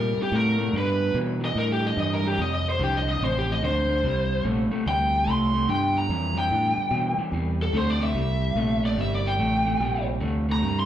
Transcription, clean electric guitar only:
Already playing: C3 G3
0.32 C3 A3
0.58 C3 A3
0.74 G2 D3
1.14 G2 E3
1.40 G2 E3
1.56 G2 D3
1.96 G2 E3
2.24 G2 E3
2.38 F2 C3
2.79 F2 D3
3.07 F2 D3
3.21 F2 C3
3.62 F2 D3
3.89 F2 D3
4.04 C3 G3
4.44 C3 A3
4.71 C3 A3
4.85 C3 G3
5.26 C3 A3
5.54 C3 A3
5.68 G2 D3
6.10 G2 E3
6.35 G2 E3
6.50 G2 D3
6.91 G2 E3
7.18 G2 E3
7.33 C3 G3
7.73 C3 A3
8.00 C3 A3
8.14 C3 G3
8.56 C3 A3
8.82 C3 A3
8.98 C3 G3
9.39 C3 A3
9.65 C3 A3
9.80 C3 G3
10.20 C3 A3
10.49 C3 A3
10.62 C3 G3

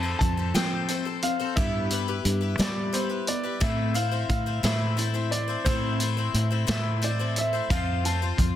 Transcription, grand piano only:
Already playing: A5
0.19 A5
0.55 G5
1.23 F5
1.56 E5
2.60 D5
2.93 C5
3.28 D5
3.61 E5
3.95 F5
4.30 F5
4.64 E5
5.31 D5
5.64 C5
6.70 E5
7.04 D5
7.38 E5
7.71 F5
8.06 A5

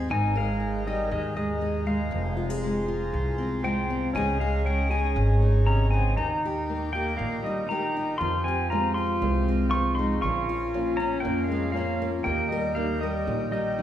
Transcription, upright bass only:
0.10 G#1
1.11 D#2
2.12 F1
3.13 C2
4.15 C#2
5.16 G#1
6.17 D#2
7.19 A#1
8.21 F2
9.22 C2
10.24 A#1
11.25 F2
12.26 D#2
13.27 A#1

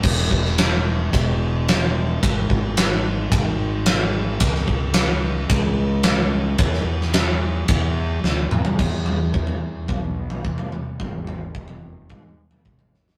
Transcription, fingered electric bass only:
0.04 E1
0.31 E1
1.13 E1
2.23 G#1
2.51 G#1
3.31 G#1
4.41 C#2
4.68 C#2
5.50 C#2
6.59 E2
6.84 E2
7.69 E2
8.24 D2
8.51 E2
8.79 E2
9.34 E2
9.89 B1
10.45 E2
11.00 G#1
11.55 F1
12.10 G#2
12.66 G#1

